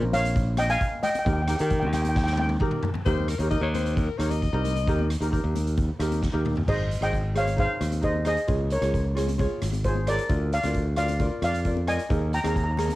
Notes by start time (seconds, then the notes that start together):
Already playing: C#4 F4 A#4
0.02 A#1, high conga
0.13 C#5 F5, closed hi-hat, high conga, low conga
0.24 closed hi-hat, high conga
0.36 kick, closed hi-hat
0.57 D#5 G5, cross-stick, closed hi-hat, high conga
0.69 F5 G#5, closed hi-hat
0.81 kick, closed hi-hat
1.03 D#5 G5, closed hi-hat, low conga
1.10 G5
1.14 closed hi-hat, high conga
1.19 G5
1.25 D#2 D#4 G4 A#4 G5, kick, closed hi-hat, low conga
1.33 G5
1.42 G5
1.48 D#4 G4 A#4 G5, cross-stick, closed hi-hat
1.56 D#3 D#4 G4 G5, closed hi-hat
1.61 A#4 G5
1.70 G5, kick, closed hi-hat, low conga
1.80 D#2 G5, high conga
1.87 G5
1.93 G5, cross-stick, closed hi-hat, high conga, low conga
2.02 G5, closed hi-hat, high conga
2.09 G5
2.15 G5, kick, snare
2.24 G5, snare
2.33 G5
2.38 G5, high tom, high conga
2.49 high tom
2.60 D#4 G4 A#4, kick, mid tom
2.71 mid tom
2.83 floor tom, low conga
2.94 floor tom, high conga
3.05 D#2 D#4 G4 A#4 C5, kick, closed hi-hat
3.18 high conga
3.28 A#4, cross-stick, closed hi-hat
3.39 D#2 D#4 G4 A#4 C#5, closed hi-hat
3.50 D#4 G4 A#4 D#5, kick, closed hi-hat
3.61 D#2 C#5
3.74 C5, closed hi-hat, high conga, low conga
3.86 closed hi-hat
3.96 A#4, kick, closed hi-hat, high conga
4.18 D#2 D#4 G4 A#4 C#5, cross-stick, closed hi-hat
4.31 D#5, closed hi-hat, high conga
4.42 kick, closed hi-hat
4.53 C2 D#4 G4 A#4
4.64 closed hi-hat, low conga
4.76 closed hi-hat, high conga
4.87 D#2 D#4 G4 A#4, kick, closed hi-hat
4.99 high conga
5.10 cross-stick, closed hi-hat
5.21 D#2 D#4 G4 A#4, closed hi-hat
5.31 D#4 G4 A#4, kick, closed hi-hat
5.44 D#2
5.55 closed hi-hat, high conga, low conga
5.67 closed hi-hat
5.77 kick, closed hi-hat, high conga
5.99 D#2 D#4 G4 A#4, cross-stick, closed hi-hat
6.12 closed hi-hat, high conga
6.22 kick, snare
6.32 D#2 D#4 G4 A#4
6.45 mid tom, low conga
6.56 floor tom, high conga
6.67 G#1 D#4 G#4 C5 D#5, kick, crash
6.91 closed hi-hat
7.01 G#1 D#4 G#4 C5 D#5 G5, cross-stick, closed hi-hat, high conga
7.13 kick, closed hi-hat
7.34 D#4 G#4 C5 C#5 F5, cross-stick, closed hi-hat, low conga
7.47 closed hi-hat, high conga
7.56 D#4 G#4 C5 F5, kick, closed hi-hat, high conga
7.81 D#2, cross-stick, closed hi-hat, low conga
7.92 closed hi-hat, high conga
8.01 D#4 G#4 C5 D#5, kick, closed hi-hat
8.16 high conga
8.25 D#4 G#4 C5 D#5, cross-stick, closed hi-hat, low conga
8.37 closed hi-hat
8.47 C#2 F4 G#4 C#5, kick, closed hi-hat
8.70 A#4 C#5, closed hi-hat
8.82 C#2 F4 G#4 C#5, cross-stick, closed hi-hat, high conga
8.94 kick, closed hi-hat
9.15 F4 G#4 C#5, cross-stick, closed hi-hat, low conga
9.27 closed hi-hat, high conga
9.38 F4 G#4 C#5, kick, closed hi-hat, high conga
9.62 G#1, cross-stick, closed hi-hat, low conga
9.73 closed hi-hat, high conga
9.84 F4 G#4 C5 C#5, kick, closed hi-hat
9.95 high conga
10.07 F4 G#4 A#4 C#5 D5, cross-stick, closed hi-hat, low conga
10.18 closed hi-hat
10.29 D2 F4 A#4 D5, kick, closed hi-hat
10.53 D5 F5, closed hi-hat
10.63 D2 F4 A#4 D5, cross-stick, closed hi-hat, high conga
10.74 kick, closed hi-hat
10.96 F4 A#4 D5 F5, cross-stick, closed hi-hat, low conga
11.08 closed hi-hat, high conga
11.19 F4 A#4 D5, kick, closed hi-hat, high conga
11.42 F2 D5 F5, cross-stick, closed hi-hat, low conga
11.53 closed hi-hat, high conga
11.65 F4 A#4 D5, kick, closed hi-hat
11.77 high conga
11.87 F4 A#4 D5 D#5 G#5, cross-stick, closed hi-hat, low conga
11.99 closed hi-hat
12.09 D#2 D#4 G#4 A#4, kick, closed hi-hat
12.33 G5 A#5, closed hi-hat
12.40 D#2 D#4 G#4 A#5, high conga
12.45 A#4 A#5, cross-stick, closed hi-hat
12.56 A#5, kick, closed hi-hat
12.64 A#5
12.71 A#5
12.77 D#4 G#4 A#4 A#5, cross-stick, closed hi-hat, low conga
12.86 A#5, high conga
12.90 closed hi-hat